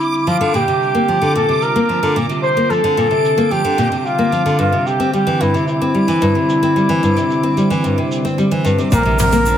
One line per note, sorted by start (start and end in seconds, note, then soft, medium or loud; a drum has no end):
0.00 9.58 D3 medium
0.00 0.27 G3 medium
0.00 0.27 C4 medium
0.00 0.27 E4 medium
0.00 0.29 E4 medium
0.00 8.93 D6 medium
0.00 shaker medium
0.14 shaker soft
0.27 0.39 F3 medium
0.27 0.54 F4 medium
0.27 shaker soft
0.41 0.53 D3 medium
0.54 0.66 A#2 medium
0.54 1.32 G4 medium
0.54 shaker medium
0.60 9.58 G3 medium
0.68 0.93 C3 medium
0.68 shaker soft
0.77 9.58 C4 medium
0.83 shaker soft
0.93 1.07 A#3 medium
0.93 4.60 F4 medium
1.08 1.20 F3 medium
1.22 1.34 D3 medium
1.22 shaker soft
1.35 1.48 A#2 medium
1.35 1.64 A4 medium
1.35 shaker soft
1.49 1.74 C3 medium
1.62 2.16 A#4 medium
1.62 shaker medium
1.75 1.88 A#3 medium
1.75 shaker medium
1.89 2.01 F3 medium
1.89 shaker soft
2.03 2.15 D3 medium
2.16 2.28 A#2 medium
2.16 shaker medium
2.29 2.55 C3 medium
2.29 shaker soft
2.43 2.72 C5 loud
2.43 shaker soft
2.57 2.69 A#3 medium
2.70 2.82 F3 medium
2.70 3.53 A4 medium
2.70 shaker medium
2.84 2.96 D3 medium
2.84 shaker soft
2.97 3.10 A#2 medium
2.97 shaker soft
3.11 3.36 C3 medium
3.25 shaker medium
3.38 3.50 A#3 medium
3.38 shaker soft
3.51 3.63 F3 medium
3.51 3.98 G4 medium
3.51 shaker soft
3.65 3.77 D3 medium
3.78 3.90 A#2 medium
3.78 shaker medium
3.92 4.18 C3 medium
3.92 shaker medium
3.99 4.07 G4 medium
4.05 4.59 F4 medium
4.05 shaker soft
4.19 4.31 A#3 medium
4.32 4.45 F3 medium
4.32 shaker medium
4.46 4.58 D3 medium
4.46 shaker soft
4.59 4.71 G2 medium
4.59 4.88 F4 medium
4.59 shaker soft
4.72 4.98 C3 medium
4.87 5.13 G4 medium
4.87 shaker medium
5.00 5.12 C4 medium
5.00 shaker soft
5.13 5.26 G3 medium
5.13 5.42 G4 medium
5.13 shaker soft
5.27 5.39 E3 medium
5.40 5.53 G2 medium
5.40 5.67 E4 medium
5.40 shaker medium
5.54 5.80 C3 medium
5.54 shaker medium
5.67 8.34 E4 medium
5.67 shaker soft
5.76 8.92 E4 medium
5.82 5.93 C4 medium
5.94 6.07 G3 medium
6.08 6.20 E3 medium
6.08 shaker soft
6.21 6.34 G2 medium
6.21 shaker soft
6.35 6.61 C3 medium
6.49 shaker medium
6.63 6.75 C4 medium
6.63 shaker medium
6.76 6.88 G3 medium
6.76 shaker soft
6.89 7.01 E3 medium
7.03 7.15 G2 medium
7.03 shaker medium
7.17 7.42 C3 medium
7.17 shaker soft
7.30 shaker soft
7.43 7.55 C4 medium
7.57 7.69 G3 medium
7.57 shaker medium
7.70 7.83 E3 medium
7.70 shaker medium
7.84 7.96 G2 medium
7.84 shaker soft
7.98 8.23 C3 medium
8.12 shaker medium
8.25 8.37 C4 medium
8.25 shaker medium
8.38 8.50 G3 medium
8.38 shaker soft
8.51 8.64 E3 medium
8.65 8.77 G2 medium
8.65 shaker medium
8.79 8.91 C3 medium
8.79 shaker soft
8.92 9.58 A#1 medium
8.92 9.04 A#2 loud
8.92 9.18 A#4 loud
8.92 kick loud
8.92 shaker soft
9.05 9.31 C3 medium
9.19 9.58 A#4 loud
9.19 mid tom medium
9.19 open hi-hat loud
9.19 shaker medium
9.32 9.45 A#3 loud
9.32 shaker medium
9.37 9.58 F4 medium
9.46 9.58 F3 medium
9.46 shaker soft